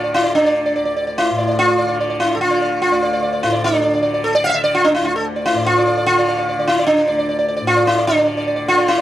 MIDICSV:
0, 0, Header, 1, 3, 480
1, 0, Start_track
1, 0, Tempo, 410678
1, 399, Time_signature, 4, 2, 24, 8
1, 5195, Tempo, 403769
1, 10626, End_track
2, 0, Start_track
2, 0, Title_t, "Sitar"
2, 0, Program_c, 0, 104
2, 0, Note_on_c, 0, 65, 103
2, 42, Note_on_c, 0, 74, 39
2, 168, Note_on_c, 0, 64, 96
2, 189, Note_off_c, 0, 65, 0
2, 259, Note_off_c, 0, 74, 0
2, 273, Note_on_c, 0, 74, 43
2, 403, Note_off_c, 0, 64, 0
2, 408, Note_on_c, 0, 62, 88
2, 500, Note_off_c, 0, 74, 0
2, 523, Note_on_c, 0, 74, 40
2, 746, Note_off_c, 0, 74, 0
2, 767, Note_on_c, 0, 74, 43
2, 870, Note_off_c, 0, 74, 0
2, 884, Note_on_c, 0, 74, 39
2, 982, Note_off_c, 0, 74, 0
2, 996, Note_on_c, 0, 74, 43
2, 1081, Note_off_c, 0, 62, 0
2, 1114, Note_off_c, 0, 74, 0
2, 1128, Note_on_c, 0, 74, 42
2, 1236, Note_off_c, 0, 74, 0
2, 1250, Note_on_c, 0, 74, 43
2, 1378, Note_on_c, 0, 64, 97
2, 1471, Note_off_c, 0, 74, 0
2, 1614, Note_on_c, 0, 74, 41
2, 1716, Note_off_c, 0, 74, 0
2, 1730, Note_on_c, 0, 74, 44
2, 1819, Note_off_c, 0, 64, 0
2, 1856, Note_on_c, 0, 65, 120
2, 1944, Note_off_c, 0, 74, 0
2, 1958, Note_on_c, 0, 74, 42
2, 2070, Note_off_c, 0, 74, 0
2, 2084, Note_on_c, 0, 74, 41
2, 2189, Note_off_c, 0, 74, 0
2, 2203, Note_on_c, 0, 74, 43
2, 2298, Note_off_c, 0, 65, 0
2, 2330, Note_off_c, 0, 74, 0
2, 2344, Note_on_c, 0, 74, 42
2, 2440, Note_off_c, 0, 74, 0
2, 2454, Note_on_c, 0, 74, 38
2, 2569, Note_on_c, 0, 64, 79
2, 2674, Note_off_c, 0, 74, 0
2, 2743, Note_off_c, 0, 64, 0
2, 2743, Note_on_c, 0, 69, 68
2, 2810, Note_off_c, 0, 69, 0
2, 2816, Note_on_c, 0, 65, 84
2, 2929, Note_on_c, 0, 74, 44
2, 3045, Note_off_c, 0, 74, 0
2, 3059, Note_on_c, 0, 74, 38
2, 3276, Note_off_c, 0, 74, 0
2, 3279, Note_off_c, 0, 65, 0
2, 3293, Note_on_c, 0, 65, 82
2, 3412, Note_on_c, 0, 74, 41
2, 3522, Note_off_c, 0, 74, 0
2, 3536, Note_on_c, 0, 74, 39
2, 3646, Note_off_c, 0, 74, 0
2, 3660, Note_on_c, 0, 74, 46
2, 3754, Note_off_c, 0, 74, 0
2, 3768, Note_on_c, 0, 74, 40
2, 3875, Note_off_c, 0, 74, 0
2, 3889, Note_on_c, 0, 74, 41
2, 3960, Note_off_c, 0, 65, 0
2, 4009, Note_on_c, 0, 64, 78
2, 4104, Note_off_c, 0, 74, 0
2, 4118, Note_on_c, 0, 74, 42
2, 4252, Note_off_c, 0, 64, 0
2, 4257, Note_on_c, 0, 62, 96
2, 4342, Note_off_c, 0, 74, 0
2, 4359, Note_on_c, 0, 74, 38
2, 4464, Note_off_c, 0, 74, 0
2, 4478, Note_on_c, 0, 74, 37
2, 4586, Note_off_c, 0, 74, 0
2, 4600, Note_on_c, 0, 74, 41
2, 4690, Note_off_c, 0, 74, 0
2, 4704, Note_on_c, 0, 74, 40
2, 4823, Note_off_c, 0, 74, 0
2, 4837, Note_on_c, 0, 74, 41
2, 4955, Note_on_c, 0, 69, 88
2, 4986, Note_off_c, 0, 62, 0
2, 5059, Note_off_c, 0, 74, 0
2, 5067, Note_off_c, 0, 69, 0
2, 5082, Note_on_c, 0, 74, 103
2, 5189, Note_on_c, 0, 77, 106
2, 5202, Note_off_c, 0, 74, 0
2, 5220, Note_on_c, 0, 76, 90
2, 5224, Note_off_c, 0, 77, 0
2, 5251, Note_on_c, 0, 77, 110
2, 5253, Note_off_c, 0, 76, 0
2, 5312, Note_on_c, 0, 76, 98
2, 5316, Note_off_c, 0, 77, 0
2, 5419, Note_off_c, 0, 76, 0
2, 5423, Note_on_c, 0, 74, 102
2, 5552, Note_on_c, 0, 65, 100
2, 5555, Note_off_c, 0, 74, 0
2, 5671, Note_on_c, 0, 62, 92
2, 5680, Note_off_c, 0, 65, 0
2, 5786, Note_off_c, 0, 62, 0
2, 5791, Note_on_c, 0, 64, 88
2, 5911, Note_on_c, 0, 65, 89
2, 5920, Note_off_c, 0, 64, 0
2, 6037, Note_off_c, 0, 65, 0
2, 6042, Note_on_c, 0, 69, 81
2, 6154, Note_off_c, 0, 69, 0
2, 6282, Note_on_c, 0, 74, 39
2, 6397, Note_on_c, 0, 64, 92
2, 6507, Note_off_c, 0, 74, 0
2, 6527, Note_on_c, 0, 74, 43
2, 6624, Note_off_c, 0, 64, 0
2, 6644, Note_on_c, 0, 65, 114
2, 6750, Note_off_c, 0, 74, 0
2, 6783, Note_on_c, 0, 74, 43
2, 6878, Note_off_c, 0, 74, 0
2, 6892, Note_on_c, 0, 74, 42
2, 6999, Note_off_c, 0, 74, 0
2, 7014, Note_on_c, 0, 74, 45
2, 7106, Note_off_c, 0, 65, 0
2, 7120, Note_on_c, 0, 65, 108
2, 7234, Note_off_c, 0, 74, 0
2, 7265, Note_on_c, 0, 74, 43
2, 7367, Note_off_c, 0, 74, 0
2, 7381, Note_on_c, 0, 74, 43
2, 7488, Note_off_c, 0, 74, 0
2, 7503, Note_on_c, 0, 74, 46
2, 7612, Note_off_c, 0, 74, 0
2, 7626, Note_on_c, 0, 74, 43
2, 7736, Note_off_c, 0, 74, 0
2, 7750, Note_on_c, 0, 74, 42
2, 7845, Note_on_c, 0, 64, 91
2, 7866, Note_off_c, 0, 65, 0
2, 7963, Note_off_c, 0, 74, 0
2, 7985, Note_on_c, 0, 74, 45
2, 8068, Note_off_c, 0, 64, 0
2, 8073, Note_on_c, 0, 62, 87
2, 8200, Note_off_c, 0, 74, 0
2, 8217, Note_on_c, 0, 74, 38
2, 8312, Note_off_c, 0, 74, 0
2, 8326, Note_on_c, 0, 74, 43
2, 8438, Note_off_c, 0, 74, 0
2, 8452, Note_on_c, 0, 74, 44
2, 8559, Note_off_c, 0, 74, 0
2, 8573, Note_on_c, 0, 74, 43
2, 8679, Note_off_c, 0, 74, 0
2, 8693, Note_on_c, 0, 74, 43
2, 8751, Note_off_c, 0, 62, 0
2, 8794, Note_off_c, 0, 74, 0
2, 8808, Note_on_c, 0, 74, 45
2, 8891, Note_off_c, 0, 74, 0
2, 8905, Note_on_c, 0, 74, 44
2, 9031, Note_on_c, 0, 65, 106
2, 9128, Note_off_c, 0, 74, 0
2, 9142, Note_on_c, 0, 74, 42
2, 9260, Note_off_c, 0, 65, 0
2, 9268, Note_on_c, 0, 64, 101
2, 9375, Note_off_c, 0, 74, 0
2, 9400, Note_on_c, 0, 74, 50
2, 9503, Note_off_c, 0, 64, 0
2, 9508, Note_on_c, 0, 62, 91
2, 9614, Note_off_c, 0, 74, 0
2, 9628, Note_on_c, 0, 74, 41
2, 9737, Note_off_c, 0, 62, 0
2, 9737, Note_off_c, 0, 74, 0
2, 9751, Note_on_c, 0, 74, 40
2, 9846, Note_off_c, 0, 74, 0
2, 9861, Note_on_c, 0, 74, 44
2, 9971, Note_off_c, 0, 74, 0
2, 9985, Note_on_c, 0, 74, 45
2, 10073, Note_off_c, 0, 74, 0
2, 10087, Note_on_c, 0, 74, 43
2, 10234, Note_on_c, 0, 65, 106
2, 10323, Note_off_c, 0, 74, 0
2, 10346, Note_on_c, 0, 74, 45
2, 10470, Note_on_c, 0, 64, 104
2, 10482, Note_off_c, 0, 65, 0
2, 10570, Note_off_c, 0, 74, 0
2, 10584, Note_on_c, 0, 74, 44
2, 10626, Note_off_c, 0, 64, 0
2, 10626, Note_off_c, 0, 74, 0
2, 10626, End_track
3, 0, Start_track
3, 0, Title_t, "Tanpura"
3, 0, Program_c, 1, 104
3, 0, Note_on_c, 1, 38, 68
3, 0, Note_on_c, 1, 45, 67
3, 0, Note_on_c, 1, 50, 65
3, 283, Note_off_c, 1, 50, 0
3, 283, Note_on_c, 1, 50, 67
3, 906, Note_off_c, 1, 38, 0
3, 911, Note_on_c, 1, 38, 64
3, 1525, Note_off_c, 1, 45, 0
3, 1529, Note_on_c, 1, 45, 68
3, 2153, Note_off_c, 1, 50, 0
3, 2153, Note_on_c, 1, 50, 67
3, 2773, Note_off_c, 1, 50, 0
3, 2773, Note_on_c, 1, 50, 68
3, 3386, Note_off_c, 1, 38, 0
3, 3390, Note_on_c, 1, 38, 69
3, 4010, Note_off_c, 1, 45, 0
3, 4015, Note_on_c, 1, 45, 64
3, 4618, Note_off_c, 1, 50, 0
3, 4618, Note_on_c, 1, 50, 60
3, 5232, Note_off_c, 1, 50, 0
3, 5232, Note_on_c, 1, 50, 70
3, 5865, Note_off_c, 1, 38, 0
3, 5870, Note_on_c, 1, 38, 66
3, 6492, Note_off_c, 1, 45, 0
3, 6496, Note_on_c, 1, 45, 70
3, 7113, Note_off_c, 1, 50, 0
3, 7113, Note_on_c, 1, 50, 69
3, 7734, Note_off_c, 1, 50, 0
3, 7734, Note_on_c, 1, 50, 69
3, 8337, Note_off_c, 1, 38, 0
3, 8342, Note_on_c, 1, 38, 69
3, 8958, Note_off_c, 1, 45, 0
3, 8963, Note_on_c, 1, 45, 69
3, 9584, Note_off_c, 1, 50, 0
3, 9584, Note_on_c, 1, 50, 70
3, 10202, Note_off_c, 1, 50, 0
3, 10202, Note_on_c, 1, 50, 74
3, 10626, Note_off_c, 1, 38, 0
3, 10626, Note_off_c, 1, 45, 0
3, 10626, Note_off_c, 1, 50, 0
3, 10626, End_track
0, 0, End_of_file